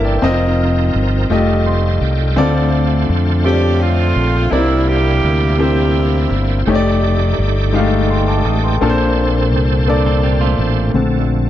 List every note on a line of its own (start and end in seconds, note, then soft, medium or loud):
0.00 0.20 G1 medium
0.00 0.24 C3 medium
0.00 0.18 E3 medium
0.00 0.18 A#3 medium
0.00 0.24 A#3 loud
0.00 0.18 D4 medium
0.00 0.24 D#4 medium
0.00 0.24 E4 medium
0.00 0.24 A4 medium
0.00 0.23 A#4 medium
0.00 0.24 C5 medium
0.00 0.05 D5 loud
0.00 0.24 E5 medium
0.04 0.39 A4 medium
0.04 0.38 C5 medium
0.04 0.39 D5 medium
0.04 0.39 G5 medium
0.22 0.90 F1 loud
0.22 1.30 F3 medium
0.22 0.93 C4 medium
0.22 1.31 C4 medium
0.22 1.28 D#4 medium
0.22 0.94 F4 medium
0.22 0.94 A#4 medium
0.22 1.31 A#4 medium
0.22 0.94 D#5 loud
0.94 1.27 G1 medium
1.29 1.97 F1 medium
1.29 2.37 G3 medium
1.29 2.01 A3 medium
1.29 2.37 D#4 medium
1.29 2.35 F4 medium
1.29 2.01 F4 medium
1.29 1.36 G4 medium
1.29 2.02 G4 medium
1.29 2.02 D#5 medium
1.36 2.40 A4 medium
1.66 1.99 C5 medium
1.66 2.33 C6 medium
2.01 2.34 C2 medium
2.01 2.35 G5 medium
2.36 3.04 D2 loud
2.36 3.41 D3 medium
2.36 4.47 A3 medium
2.36 3.08 C4 medium
2.36 4.47 D4 medium
2.36 4.47 F4 medium
2.36 3.08 F4 medium
2.36 3.09 A4 medium
2.36 2.43 B4 medium
2.36 3.09 D5 loud
2.43 4.51 C5 medium
3.09 4.12 F2 medium
3.44 4.16 C4 medium
3.44 4.16 F4 medium
3.44 3.78 G4 medium
3.44 4.16 A4 medium
3.44 3.52 C#5 medium
3.52 4.20 D5 medium
3.80 4.49 A3 medium
3.80 4.49 C4 medium
3.80 4.52 F4 loud
4.16 4.49 A#1 medium
4.50 5.19 C2 medium
4.50 5.55 C3 medium
4.50 5.55 G3 medium
4.50 6.62 A#3 medium
4.50 4.87 A#3 medium
4.50 5.23 C4 medium
4.50 6.62 D4 medium
4.50 4.58 D#4 medium
4.50 4.87 E4 loud
4.50 6.62 E4 medium
4.50 5.23 A#4 medium
4.50 4.58 B4 medium
4.50 5.23 D5 medium
4.58 5.26 E4 medium
4.58 6.64 C5 medium
4.87 5.59 A#3 medium
4.87 5.59 E4 medium
4.87 5.57 G4 loud
5.23 6.26 D2 medium
5.58 6.63 A#3 medium
5.58 6.30 C4 medium
5.58 6.30 E4 medium
5.58 6.63 E4 medium
5.58 6.35 G4 loud
5.58 6.31 A#4 medium
5.58 6.31 C5 medium
6.31 6.63 G1 medium
6.65 7.34 F1 loud
6.65 8.76 A3 medium
6.65 7.38 A3 medium
6.65 8.77 D#4 medium
6.65 7.38 D#4 medium
6.65 8.76 G4 medium
6.65 7.38 G4 medium
6.65 6.72 C5 medium
6.65 6.74 C#5 medium
6.72 8.80 D5 medium
6.72 7.42 D5 loud
7.38 8.41 G1 medium
7.72 7.79 G#3 medium
7.72 8.45 D#4 medium
7.72 8.45 G4 medium
7.72 8.45 F5 medium
7.80 8.48 A3 medium
8.10 8.27 G5 medium
8.10 8.27 C6 medium
8.28 8.44 A5 medium
8.28 8.44 D6 medium
8.45 8.78 A1 medium
8.45 8.62 A5 medium
8.45 8.62 D#6 medium
8.64 8.97 G5 medium
8.64 8.97 C6 medium
8.81 9.53 A#1 loud
8.81 9.84 A#2 medium
8.81 9.52 A#3 medium
8.81 10.92 C4 medium
8.81 9.52 D4 medium
8.81 10.91 D4 medium
8.81 10.91 A4 medium
8.81 9.52 A4 medium
8.81 8.88 A#4 medium
8.81 10.91 C5 medium
8.89 9.56 C5 loud
9.53 10.56 C2 medium
9.88 10.59 A#3 medium
9.88 10.59 D4 medium
9.88 10.59 A4 medium
9.88 10.60 D5 medium
10.06 10.23 C4 medium
10.06 10.23 A4 medium
10.23 10.40 A#3 medium
10.23 10.40 G4 medium
10.41 10.92 A3 medium
10.41 10.92 F4 medium
10.59 10.92 A1 medium
10.94 11.50 A#1 medium
10.94 11.50 D3 soft
10.94 11.50 D3 medium
10.94 11.50 F3 medium
10.94 11.50 A3 soft
10.94 11.50 A3 medium
10.94 11.50 C4 medium
10.94 11.50 A4 medium